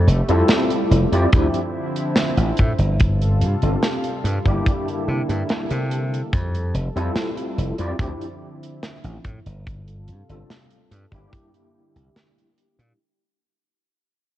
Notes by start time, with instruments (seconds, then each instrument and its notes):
Already playing: analog synth pad G3 A3
0.07 slap bass F1, closed hi-hat
0.29 slap bass F2, tine electric piano G3 C4 E4 F4 A4, closed hi-hat
0.48 snare, closed hi-hat
0.70 closed hi-hat
0.91 slap bass F1, closed hi-hat
1.12 slap bass F2, tine electric piano G3 C4 E4 F4 D5, closed hi-hat
1.32 slap bass D2, analog synth pad D3 F3 C4 E4, tine electric piano F3 C4 D4 E4 G4, kick, closed hi-hat
1.54 closed hi-hat
1.96 closed hi-hat
2.16 snare, closed hi-hat
2.37 slap bass A1, closed hi-hat
2.57 slap bass A2, kick, closed hi-hat
2.78 slap bass G1, closed hi-hat
3.00 analog synth pad C3 G3 F4 A4, kick, closed hi-hat
3.21 closed hi-hat
3.41 slap bass G2, closed hi-hat
3.62 slap bass G1, tine electric piano G3 C4 D4 F4 A4, closed hi-hat
3.83 snare, closed hi-hat
4.04 closed hi-hat
4.24 slap bass G2, closed hi-hat
4.45 slap bass G1, tine electric piano G3 A#3 D4 E4 G4, kick, closed hi-hat
4.66 analog synth pad D3 A#3 E4, kick, closed hi-hat
4.88 closed hi-hat
5.08 slap bass C3
5.29 slap bass G2, closed hi-hat
5.49 snare, closed hi-hat
5.70 slap bass C3, closed hi-hat
5.91 closed hi-hat
6.14 closed hi-hat
6.33 slap bass F2, analog synth pad G3, kick, closed hi-hat
6.55 closed hi-hat
6.74 slap bass F1, closed hi-hat
6.96 slap bass F2, tine electric piano G3 C4 E4 F4 A4, closed hi-hat
7.16 snare, closed hi-hat
7.37 closed hi-hat
7.58 slap bass F1, closed hi-hat
7.78 slap bass F2, tine electric piano G3 C4 E4 F4 D5, closed hi-hat
7.99 slap bass D2, analog synth pad D3 F3 C4 E4, tine electric piano F3 C4 D4 E4 G4, kick, closed hi-hat
8.22 closed hi-hat
8.63 closed hi-hat
8.83 snare, closed hi-hat
9.04 slap bass A1, closed hi-hat
9.24 slap bass A2, kick, closed hi-hat
9.46 slap bass G1, closed hi-hat
9.66 analog synth pad C3 G3 F4 A4, kick, closed hi-hat
9.88 closed hi-hat
10.08 slap bass G2, closed hi-hat
10.29 slap bass G1, tine electric piano G3 C4 D4 F4 A4, closed hi-hat
10.50 snare, closed hi-hat
10.70 closed hi-hat
10.91 slap bass G2, closed hi-hat
11.11 slap bass G1, tine electric piano G3 A#3 D4 E4 G4, kick, closed hi-hat
11.33 analog synth pad D3 A#3 E4, kick, closed hi-hat
11.54 closed hi-hat
11.96 slap bass C2, closed hi-hat
12.16 snare, closed hi-hat
12.38 closed hi-hat
12.58 closed hi-hat
12.79 slap bass A#2, closed hi-hat